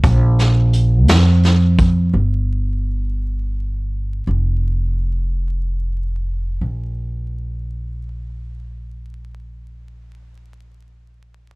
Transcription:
<<
  \new Staff \with { instrumentName = "Upright bass" } { \clef bass \time 6/8 \key c \dorian \tempo 4. = 52 bes,,4. f,4. | g,,2. | f,,2. | bes,,2.~ |
bes,,2. | }
  \new DrumStaff \with { instrumentName = "Drums" } \drummode { \time 6/8 <hh bd>8 <hh sn>8 hh8 <hh sn>8 <hh sn>8 <hh bd>8 | r4. r4. | r4. r4. | r4. r4. |
r4. r4. | }
>>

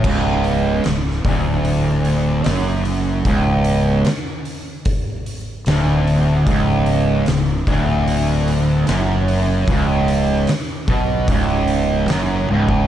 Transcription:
<<
  \new Staff \with { instrumentName = "Distorted electric guitar" } { \clef bass \time 4/4 \key b \mixolydian \tempo 4 = 75 cis,4 cis,8 d,4. fis,4 | cis,4 r2 d,4 | cis,4 cis,8 d,4. fis,4 | cis,4 r8 b,8 cis,4 fis,8 cis,8 | }
  \new Staff \with { instrumentName = "Fingered electric bass" } { \clef bass \time 4/4 \key b \mixolydian cis,,4 cis,,8 d,,4. fis,,4 | cis,,4 r2 d,,4 | cis,,4 cis,,8 d,,4. fis,,4 | cis,,4 r8 b,,8 cis,,4 fis,,8 cis,,8 | }
  \new DrumStaff \with { instrumentName = "Drums" } \drummode { \time 4/4 <cymc bd>8 hho8 <hho sn>8 <hho bd>8 hho8 hho8 <hho sn>8 hho8 | <hho bd>8 hho8 <hho sn>8 hho8 <hho bd>8 hho8 <hho sn>8 hho8 | <hho bd>8 hho8 <hho sn>8 <hho bd>8 hho8 hho8 <hho sn>8 hho8 | <hho bd>8 hho8 <hho sn>8 <hho bd>8 <hho bd>8 hho8 <hho sn>8 tommh16 bd16 | }
>>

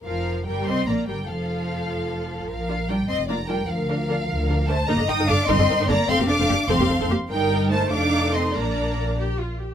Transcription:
<<
  \new Staff \with { instrumentName = "Violin section" } { \time 6/8 \key bes \major \tempo 4. = 99 f''4 g''8 c'''8 bes''8 g''8 | f''2. | f''4 g''8 c'''8 bes''8 g''8 | f''2~ f''8 a''8 |
bes''8 ees'''8 d'''8 c'''4 bes''8 | c'''8 d'''4 c'''4 r8 | g''4 a''8 d'''4 c'''8 | bes''4. r4. | }
  \new Staff \with { instrumentName = "Violin section" } { \time 6/8 \key bes \major bes'4 bes'8 ees''8 d''8 bes'8 | a'2. | bes'4 bes'8 ees''8 d''8 bes'8 | bes'2~ bes'8 c''8 |
ees''8 g''8 f''8 ees''4 d''8 | f''8 f''4 f''4 r8 | bes'4 c''8 f''4 ees''8 | d''4. r4. | }
  \new Staff \with { instrumentName = "Viola section" } { \time 6/8 \key bes \major f4 g8 c'8 bes8 g8 | f2. | r8 <d' f'>8 <d' f'>8 r8 <d' f'>8 <d' f'>8 | r8 <d' bes'>8 <d' bes'>8 r8 <d' bes'>8 <d' bes'>8 |
<ees' bes'>16 <d' a'>16 <ees' bes'>16 <ees' bes'>16 <d' a'>16 r16 <ees' bes'>16 <d' a'>16 <ees' bes'>16 <ees' bes'>16 <d' a'>16 r16 | <c' a'>16 <bes g'>16 <c' a'>16 <c' a'>16 <bes g'>16 r16 <c' a'>16 <bes g'>16 <c' a'>16 <c' a'>16 <bes g'>16 r16 | <ees' bes'>4. <ees' a'>4. | <d' bes'>4. g'8 f'8 g'8 | }
  \new Staff \with { instrumentName = "Cello section" } { \time 6/8 \key bes \major f4 g8 c'8 bes8 g8 | f2. | f4 g8 c'8 bes8 g8 | f2~ f8 a8 |
bes8 ees'8 d'8 c'4 bes8 | c'8 d'4 c'4 r8 | g4 a8 d'4 c'8 | bes4. r4. | }
  \new Staff \with { instrumentName = "Double bass section" } { \clef bass \time 6/8 \key bes \major f,,4 g,,8 c,8 bes,,8 g,,8 | f,,2. | bes,,4~ bes,,16 r16 f,,4~ f,,16 r16 | d,4~ d,16 r16 d,4~ d,16 r16 |
g,,16 g,,16 g,,16 g,,16 g,,16 r16 g,,16 g,,16 g,,16 g,,16 g,,16 r16 | f,,16 f,,16 f,,16 f,,16 f,,16 r16 f,,16 f,,16 f,,16 f,,16 f,,16 r16 | g,,4. f,,4. | bes,,2~ bes,,8 r8 | }
>>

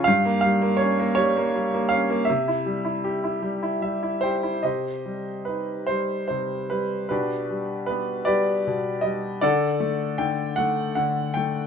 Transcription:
<<
  \new Staff \with { instrumentName = "Grand piano" } { \time 6/8 \key c \phrygian \tempo 4. = 52 << { f''8 f''8 des''8 des''4 f''8 | e''2 e''8 <c'' g''>8 | \key c \minor ees''4 b'8 c''8 c''8 b'8 | b'4 b'8 d''4 ees''8 |
d''4 g''8 fis''8 fis''8 g''8 | } \\ { r2. | r2. | <g' c''>4. r4. | <d' g'>4. <g' b'>4. |
<a' fis''>4. r4. | } >> }
  \new Staff \with { instrumentName = "Grand piano" } { \clef bass \time 6/8 \key c \phrygian g,16 bes16 g16 bes16 des'16 bes16 g16 bes16 g16 bes16 des'16 bes16 | c16 e'16 g16 e'16 g'16 e'16 g16 e'16 g16 e'16 g'16 e'16 | \key c \minor c8 g8 ees'8 g8 c8 g8 | b,8 g8 b8 g8 b,8 g8 |
d8 a8 d8 a8 d8 a8 | }
>>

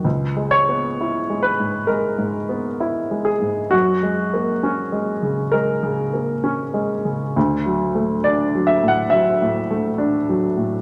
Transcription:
<<
  \new Staff \with { instrumentName = "Grand piano" } { \time 4/4 \key fis \mixolydian \tempo 4 = 66 r8 cis''4 b'8 ais'4. gis'8 | fis'2 ais'4. r8 | r4 d''8 e''16 fis''16 e''2 | }
  \new Staff \with { instrumentName = "Grand piano" } { \clef bass \time 4/4 \key fis \mixolydian \tuplet 3/2 { cis,8 gis8 b8 e'8 gis8 gis,8 gis8 gis,8 b8 e'8 gis8 gis,8 } | \tuplet 3/2 { fis,8 gis8 ais8 cis'8 gis8 cis8 gis8 cis8 ais8 cis'8 gis8 cis8 } | \tuplet 3/2 { d,8 fis8 a8 d'8 fis8 a,8 fis8 a,8 a8 d'8 fis8 a,8 } | }
>>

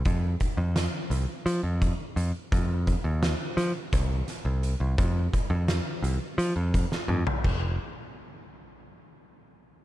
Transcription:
<<
  \new Staff \with { instrumentName = "Picked electric bass" } { \clef bass \time 7/8 \key c \phrygian \tempo 4 = 85 f,8 r16 f,8 r16 c,16 r16 f16 f,8 r16 f,16 r16 | f,8. ees,8 r16 f16 r16 c,8 r16 c,8 c,16 | f,8 r16 f,8 r16 c,16 r16 f16 f,8 r16 f,16 r16 | f,,8 r2. | }
  \new DrumStaff \with { instrumentName = "Drums" } \drummode { \time 7/8 <hh bd>8 <hh bd>8 <hh sn>8 hh8 hh8 <hh bd>8 hh8 | <hh bd>8 <hh bd>8 <hh sn>8 <hh sn>8 <hh bd sn>8 <hh sn>8 hh8 | <hh bd>8 <hh bd>8 <hh sn>8 hh8 hh8 <hh bd>16 sn16 toml16 tomfh16 | <cymc bd>4 r4 r4. | }
>>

